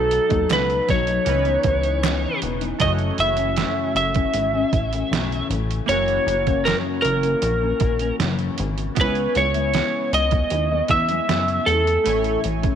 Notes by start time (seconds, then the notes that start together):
Already playing: B1 B2 F#3 A3 B3 D#4 A4
0.11 closed hi-hat
0.29 D#2 F#3 A3 D#4, kick, closed hi-hat
0.48 C#2 B2 F#3 A3 D#4, snare, clap, closed hi-hat
0.53 B4
0.70 closed hi-hat
0.87 B1 B2 F#3 A3 D#4 C#5, kick, snare, closed hi-hat
1.07 F#3 A3 D#4, closed hi-hat
1.25 C#2 C#3 E3 B3 C#4 D#4, closed hi-hat
1.29 D#4 B4
1.45 E3 B3 D#4, closed hi-hat
1.63 C#2 C#3 E3 B3 D#4, kick, closed hi-hat
1.83 closed hi-hat
2.03 C#3 E3 B3 D#4, snare, clap, closed hi-hat
2.42 E1 C#3 E3 B3 D#4, closed hi-hat
2.61 E3 B3 D#4, closed hi-hat
2.79 F#1 F#2 C#3 E3 A3 C#4 E4 F#4 D#5, kick, closed hi-hat
2.83 C#5
2.99 closed hi-hat
3.18 F#1 C#3 E3 A3 C#4 E5, closed hi-hat
3.37 E3 A3 C#4, closed hi-hat
3.56 F#2 C#3 E3 A3 C#4, snare, closed hi-hat
3.95 F#1 E5, closed hi-hat
4.14 E3 A3 C#4, kick, closed hi-hat
4.34 G#1 C#3 E3 A3 C#4, closed hi-hat
4.54 E3 A3 C#4
4.73 A1 C#3 E3 A3 C#4, kick, closed hi-hat
4.93 E3 A3 C#4, closed hi-hat
5.11 B1 F#2 C#3 E3 A3 C#4, snare, closed hi-hat
5.32 closed hi-hat
5.50 A1 C#3 E3 A3 C#4, closed hi-hat
5.71 closed hi-hat
5.86 F#1 F#2 C#3 A#3 E4 F#4 C#5, closed hi-hat
5.90 E3 A#3 C#4 C#5
6.08 closed hi-hat
6.27 F#1 C#3 E3 A#3 C#4, closed hi-hat
6.46 E3 A#3 C#4, kick, closed hi-hat
6.65 F#2 C#3 E3 A#3 C#4 A#4, snare, closed hi-hat
7.02 F#1 A#4, closed hi-hat
7.23 E3 A#3 C#4, closed hi-hat
7.42 A#1 C#3 E3 A#3, closed hi-hat
7.46 C#4
7.62 E3 A#3 C#4
7.80 A#1 C#3 E3, kick, closed hi-hat
7.84 A#3 C#4
7.99 A#3 C#4, closed hi-hat
8.04 E3
8.19 F#1 F#2 C#3 E3 A#3 C#4, snare, closed hi-hat
8.39 closed hi-hat
8.58 G#1 C#3 E3 A#3 C#4, closed hi-hat
8.78 closed hi-hat
8.95 C#2 C#3 G#3 B3 E4, kick, closed hi-hat
8.99 B4 C#5 G#5
9.15 closed hi-hat
9.35 C#2 C#3 G#3 B3 E4 C#5, closed hi-hat
9.54 G#3 B3 E4, closed hi-hat
9.72 C#3 G#3 B3 E4, snare, closed hi-hat
10.13 C#2 D#5, closed hi-hat
10.31 G#3 B3 E4, kick, closed hi-hat
10.50 D#2 C#3 G#3 B3 E4, closed hi-hat
10.69 G#3 B3 E4
10.88 E2 C#3 G#3 B3 E4 E5, kick, closed hi-hat
11.09 G#3 B3 E4, closed hi-hat
11.28 F#2 C#3 G#3 B3 E4, snare, closed hi-hat
11.48 closed hi-hat
11.66 E2 C#3 G#3 B3 E4 A4, closed hi-hat
11.85 G#3 B3 E4, closed hi-hat
12.04 A1 A2 E3 A3 C#4 E4 G#5, closed hi-hat
12.09 C#5
12.24 closed hi-hat
12.44 A1 E3 G#3 C#4 E4, closed hi-hat
12.62 G#3 C#4 E4, kick, closed hi-hat